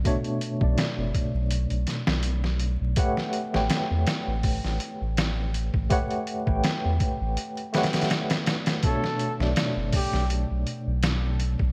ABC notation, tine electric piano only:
X:1
M:4/4
L:1/16
Q:"Swing 16ths" 1/4=82
K:Bm
V:1 name="Tine electric piano"
[B,,A,Dc]3 [B,,A,Dd] z12 | [A,GBcf]3 [A,GBcg] z12 | [A,GBcf]3 [A,GBcg] z6 [A,GBcf]6 | [B,,A,Dc]3 [B,,A,Dd] z12 |]